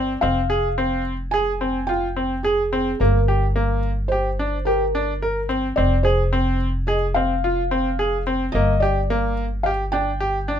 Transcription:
Already playing: G1 C4 D5
0.21 F1 C4 F5
0.50 G#4
0.78 C4
1.31 G#4 G#5
1.61 C4
1.87 F4 G5
2.16 C4
2.43 G#4
2.73 C4
3.00 G1 A#3 A#4
3.28 G4
3.56 A#3
4.08 G4 C5
4.39 D4
4.65 G4 A#4
4.95 D4
5.22 A#4
5.49 C4
5.76 F1 C4 D5
6.03 G#4 C5
6.33 C4
6.87 G#4 D#5
7.14 C4 F5
7.44 F4
7.71 C4
7.99 G#4
8.27 C4
8.52 G1 A#3 D#5
8.80 G4 D5
9.10 A#3
9.63 G4 F5
9.92 D4 G5
10.20 G4
10.48 D4

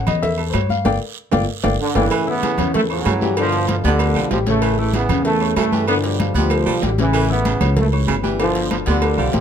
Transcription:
Already playing: E3 A3 C#4
0.07 E2 D#5, cowbell, low conga, low agogo, short guiro
0.23 E5, cowbell, high conga, low conga, long guiro
0.38 A4, high conga, low agogo
0.50 G2 C5, high conga, low timbale, low agogo
0.55 C#5, cowbell, short guiro
0.69 F5, high conga, short guiro
0.85 G1 D5 F5 G5, cowbell, high conga, high timbale, long guiro
1.31 G1 D5 F5 G5, cowbell, high conga, high timbale, long guiro
1.63 G1 D5 F5 G5, cowbell, high conga, high timbale, long guiro
1.82 D3
1.95 G1 A2 C#3 E3 D5 F5 G5, cowbell, high conga, high timbale
2.11 E3, cowbell, high conga, low agogo, long guiro
2.27 E3 B3 E4 E5, high conga
2.42 C#3, cowbell, high conga, low timbale, low agogo, short guiro
2.58 E2 C#3 C#4 C#5, cowbell, low conga, low agogo, short guiro
2.74 C#3 E3 A3 A4 A5, cowbell, high conga, low conga, long guiro
2.90 A2 C#3 F#3 C#4 C#5 C#6, high conga, low agogo
3.05 G2 C#3, cowbell, high conga, low timbale, low agogo, short guiro
3.21 E3 G3 G4 G5, high conga, short guiro
3.37 B2 D3 F3 D4 D5, cowbell, high conga, low agogo, long guiro
3.52 cowbell, high conga
3.68 F3 F4 F5, cowbell, high conga, low timbale, low agogo, short guiro
3.84 D2 F2 B2 D3 G3 B3 G4 G5, cowbell, high conga, short guiro
3.99 cowbell, high conga, low agogo, long guiro
4.15 B1 F3 G3 F4 F5, high conga, low agogo
4.31 A1 F3 G3 G4 G5, cowbell, high conga, low timbale, short guiro
4.46 C#3 E3 A3 C#4 C#5, cowbell, high conga, short guiro
4.62 E3, cowbell, high conga, low agogo, long guiro
4.78 E3 A3 E4 E5, high conga
4.93 C#3 E3 B3, cowbell, high conga, low timbale, low agogo, short guiro
5.09 E2 C#3 C#4 C#5, cowbell, low conga, low agogo, short guiro
5.25 C#3 E3 A3 A4 A5, cowbell, high conga, long guiro
5.41 C#4 C#5 C#6, high conga, low agogo
5.56 G2 C#3 E3 A3, cowbell, high conga, low timbale, low agogo, short guiro
5.72 E3 G3 G4 G5, high conga, short guiro
5.88 D3 F3 B3 D4 D5, cowbell, high conga, low agogo, long guiro
6.04 B2 D3 G3, cowbell, high conga
6.20 F3 F4 F5, cowbell, high conga, low timbale, low agogo, short guiro
6.34 D2 B2 D3 F3 G3 B3 G4 G5, cowbell, short guiro
6.50 cowbell, high conga, low agogo, long guiro
6.66 B1 F3 G3 F4 F5, high conga, low agogo
6.82 A1 D3 G3 G4 G5, cowbell, high conga, low timbale, short guiro
6.98 A2 C#3 E3 C#4 C#5, cowbell, high conga, short guiro
7.13 E3, cowbell, high conga, low agogo, long guiro
7.30 E3 B3 E4 E5, high conga
7.45 C#3, cowbell, high conga, low timbale, low agogo, short guiro
7.61 C#2 C#3 C#4 C#5, cowbell, low conga, low agogo, short guiro
7.77 C#3 E3 A3 A4 A5, cowbell, high conga, low conga, long guiro
7.93 C#4 C#5 C#6, high conga, low agogo
8.07 G1 C#3, cowbell, high conga, low timbale, low agogo, short guiro
8.23 E3 G3 G4 G5, high conga, short guiro
8.40 B2 D3 F3 D4 D5, cowbell, high conga, low agogo, long guiro
8.55 cowbell, high conga
8.71 F3 F4 F5, cowbell, high conga, low timbale, low agogo, short guiro
8.86 D2 F2 B2 D3 G3 B3 G4 G5, cowbell, high conga, short guiro
9.02 cowbell, high conga, low agogo, long guiro
9.18 B1 F3 G3 F4 F5, high conga, low agogo
9.33 A1 F3 G3 G4 G5, cowbell, high conga, low timbale, short guiro

